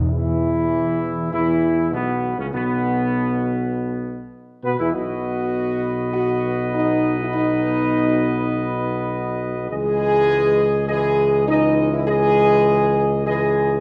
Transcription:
0.00 0.12 D#4 medium
0.11 1.29 E2 medium
0.11 1.29 E3 medium
0.11 1.29 E4 medium
0.11 1.32 E4 medium
1.32 1.95 E2 medium
1.32 1.89 E3 medium
1.32 1.89 E4 medium
1.92 2.38 B1 medium
1.92 2.35 B2 medium
1.92 2.35 B3 medium
1.92 2.36 B3 medium
2.38 2.53 C#2 medium
2.38 2.52 C#3 medium
2.38 2.46 C#4 medium
2.38 2.55 C#4 medium
2.53 4.30 B1 medium
2.53 4.29 B2 medium
2.53 4.29 B3 medium
4.63 4.78 B2 medium
4.63 4.71 B3 medium
4.63 4.77 B4 medium
4.63 4.78 B4 medium
4.79 4.93 E2 medium
4.79 4.93 E3 medium
4.79 4.93 E4 medium
4.79 4.94 E4 medium
4.93 9.66 B1 medium
4.93 9.66 B2 medium
4.93 9.67 B3 medium
4.93 6.13 F#4 loud
4.93 9.66 B4 medium
4.93 9.66 D#5 medium
6.14 6.69 F#4 loud
6.74 7.15 D#4 medium
7.20 7.26 E4 medium
7.34 9.08 D#4 loud
9.69 13.80 C#2 medium
9.69 10.73 E3 medium
9.69 10.73 G#3 medium
9.69 10.85 G#4 loud
9.69 10.84 D#5 medium
10.88 11.44 E3 medium
10.88 11.45 G#3 medium
10.88 11.44 G#4 loud
10.88 11.43 D#5 medium
11.47 12.03 E3 medium
11.47 12.03 G#3 medium
11.47 11.89 D#4 loud
11.47 11.91 D#5 medium
11.93 12.07 E4 medium
12.06 13.21 E3 medium
12.06 13.21 G#3 medium
12.06 13.22 G#4 loud
12.06 13.22 D#5 medium
13.25 13.80 E3 medium
13.25 13.80 G#3 medium
13.25 13.80 G#4 loud
13.25 13.80 D#5 medium

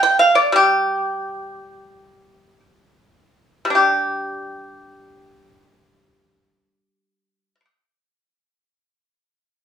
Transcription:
0.03 0.17 G5 medium
0.19 0.34 F5 medium
0.35 0.52 D5 soft
0.52 3.64 G3 soft
0.52 2.60 G4 soft
3.65 7.55 G3 soft
3.70 7.60 D4 soft
3.75 7.65 G4 soft

